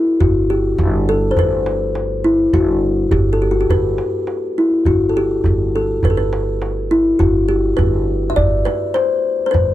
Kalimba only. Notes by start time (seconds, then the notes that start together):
Already playing: E4
0.20 F#4
0.50 G4
1.09 A4
1.31 C5
1.39 B4
2.24 E4
2.54 F#4
3.12 G4
3.33 A4
3.42 G4
3.51 F#4
3.61 G4
3.71 B4
4.58 E4
4.86 F#4
5.09 A4
5.17 G4
5.76 A4
6.05 B4
6.10 A4
6.17 B4
6.91 E4
7.19 F#4
7.49 G4
7.77 B4
8.30 E5
8.36 D5
8.65 B4
8.94 C5
9.46 C5
9.51 B4